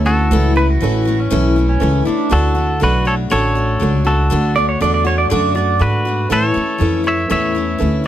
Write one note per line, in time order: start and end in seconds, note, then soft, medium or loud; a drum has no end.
0.00 0.30 D2 medium
0.00 0.21 C#4 medium
0.00 0.21 E4 medium
0.00 0.21 A4 medium
0.05 0.31 A3 soft
0.05 0.32 C#4 medium
0.05 0.31 E4 medium
0.05 0.53 F#4 medium
0.05 0.53 A4 medium
0.31 0.80 C#2 medium
0.31 0.56 A2 medium
0.31 0.57 E3 medium
0.31 0.57 A3 medium
0.31 0.71 C#4 medium
0.31 0.56 C#4 medium
0.31 0.71 E4 medium
0.31 0.54 E4 loud
0.31 0.71 A4 medium
0.56 0.81 A3 soft
0.56 0.82 C#4 soft
0.56 0.81 E4 medium
0.56 0.69 B4 medium
0.70 1.18 F#4 medium
0.80 1.31 A1 loud
0.80 1.06 E3 medium
0.80 1.07 A3 medium
0.80 1.21 C#4 medium
0.80 1.06 C#4 medium
0.80 1.21 E4 medium
0.80 1.04 E4 medium
0.80 1.21 A4 medium
1.05 1.30 A3 medium
1.05 1.31 C#4 medium
1.05 1.31 E4 medium
1.20 1.68 C#4 medium
1.30 1.80 B1 medium
1.30 1.56 A2 medium
1.30 1.56 E3 medium
1.30 1.57 A3 medium
1.30 1.71 C#4 medium
1.30 1.57 C#4 medium
1.30 1.71 E4 medium
1.30 1.55 E4 loud
1.30 1.71 A4 medium
1.56 1.80 A3 medium
1.56 1.81 C#4 medium
1.56 1.81 E4 medium
1.69 2.05 C#4 medium
1.80 2.05 C#2 loud
1.80 2.06 E3 medium
1.80 2.07 A3 medium
1.80 2.20 C#4 medium
1.80 2.06 C#4 medium
1.80 2.21 E4 medium
1.80 2.04 E4 medium
1.80 2.21 A4 medium
2.05 2.29 A3 medium
2.05 2.31 C#4 medium
2.05 2.31 D4 medium
2.05 2.31 E4 medium
2.05 muted upright bass stroke soft
2.30 2.80 D2 medium
2.30 2.56 D3 medium
2.30 2.56 A3 medium
2.30 2.70 D4 medium
2.30 2.55 D4 medium
2.30 2.71 F#4 medium
2.30 2.53 F#4 loud
2.30 2.79 F#4 medium
2.30 2.71 A4 medium
2.30 2.83 A4 medium
2.55 2.80 A3 soft
2.55 2.81 D4 soft
2.55 2.81 F#4 medium
2.80 3.30 B1 loud
2.80 3.06 D3 medium
2.80 3.06 A3 medium
2.80 3.20 D4 medium
2.80 3.05 D4 medium
2.80 3.21 F#4 medium
2.80 3.04 F#4 medium
2.80 3.06 F#4 medium
2.80 3.21 A4 medium
2.80 3.07 B4 loud
3.05 3.30 A3 soft
3.05 3.31 D4 medium
3.05 3.31 F#4 medium
3.05 3.14 A4 medium
3.05 3.14 C#5 loud
3.30 3.80 A1 medium
3.30 3.56 D3 medium
3.30 3.56 A3 medium
3.30 3.70 D4 medium
3.30 3.55 D4 medium
3.30 3.71 F#4 medium
3.30 3.54 F#4 medium
3.30 3.71 A4 medium
3.30 4.03 A4 medium
3.30 4.09 C#5 loud
3.55 3.79 A3 soft
3.55 3.81 D4 medium
3.55 3.81 F#4 medium
3.80 4.30 C#2 loud
3.80 4.06 D3 medium
3.80 4.06 A3 medium
3.80 4.21 D4 medium
3.80 4.05 D4 medium
3.80 4.21 F#4 medium
3.80 4.03 F#4 medium
3.80 4.21 A4 medium
4.05 4.30 A3 soft
4.05 4.31 D4 medium
4.05 4.31 F#4 medium
4.05 4.53 F#4 medium
4.05 4.53 A4 medium
4.30 4.80 D2 medium
4.30 4.56 D3 medium
4.30 4.56 A3 medium
4.30 4.71 D4 medium
4.30 4.56 D4 medium
4.30 4.71 F#4 medium
4.30 4.54 F#4 loud
4.30 4.71 A4 medium
4.55 4.80 A3 soft
4.55 4.81 D4 soft
4.55 4.81 F#4 soft
4.55 4.68 D5 medium
4.69 4.81 C#5 medium
4.81 5.30 E2 medium
4.81 5.06 D3 medium
4.81 5.07 A3 medium
4.81 5.21 D4 medium
4.81 5.05 D4 medium
4.81 5.21 F#4 medium
4.81 5.03 F#4 medium
4.81 5.21 A4 medium
4.81 4.93 D5 medium
4.94 5.06 D5 medium
5.05 5.30 A3 medium
5.05 5.31 D4 medium
5.05 5.30 F#4 medium
5.05 5.18 C#5 medium
5.18 5.28 D5 medium
5.30 5.80 F#2 medium
5.30 5.56 D3 medium
5.30 5.56 A3 medium
5.30 5.70 D4 medium
5.30 5.56 D4 loud
5.30 5.71 F#4 medium
5.30 5.54 F#4 loud
5.30 5.71 A4 loud
5.30 5.54 D5 medium
5.55 5.80 A3 medium
5.55 5.81 D4 medium
5.55 5.81 F#4 medium
5.55 5.80 D5 medium
5.79 6.30 G#2 medium
5.79 6.05 D3 medium
5.79 6.06 A3 medium
5.79 6.20 D4 medium
5.79 6.06 D4 medium
5.79 6.20 F#4 medium
5.79 6.28 F#4 medium
5.79 6.04 F#4 medium
5.79 6.20 A4 medium
5.79 6.32 B4 medium
6.05 6.30 A3 soft
6.05 6.31 D4 medium
6.05 6.31 F#4 medium
6.29 6.55 A2 medium
6.29 6.54 A2 medium
6.29 6.56 E3 medium
6.29 6.56 A3 medium
6.29 6.69 C#4 medium
6.29 6.55 C#4 medium
6.29 6.70 E4 medium
6.29 6.53 E4 loud
6.29 6.70 A4 medium
6.29 7.03 A4 medium
6.29 7.06 C#5 medium
6.54 6.78 A3 soft
6.54 6.80 C#4 medium
6.54 6.80 E4 medium
6.54 muted upright bass stroke soft
6.78 7.29 F2 medium
6.78 7.05 E3 medium
6.78 7.05 A3 medium
6.78 7.20 C#4 medium
6.78 7.05 C#4 medium
6.78 7.20 E4 medium
6.78 7.03 E4 medium
6.78 7.20 A4 medium
7.04 7.29 A3 soft
7.04 7.30 C#4 soft
7.04 7.30 E4 medium
7.04 7.30 C#5 medium
7.08 7.31 E5 medium
7.28 7.79 E2 medium
7.28 7.55 A2 medium
7.28 7.56 E3 medium
7.28 7.56 A3 medium
7.28 7.69 C#4 medium
7.28 7.55 C#4 medium
7.28 7.69 E4 medium
7.28 7.54 E4 medium
7.28 7.70 A4 medium
7.28 8.02 C#5 medium
7.28 8.06 E5 medium
7.55 7.78 A3 soft
7.55 7.79 C#4 soft
7.55 7.80 E4 medium
7.78 8.07 D2 medium
7.78 8.05 E3 medium
7.78 8.05 A3 medium
7.78 8.07 C#4 medium
7.78 8.04 C#4 medium
7.78 8.07 E4 medium
7.78 8.03 E4 medium
7.78 8.07 A4 medium
8.04 8.07 E4 medium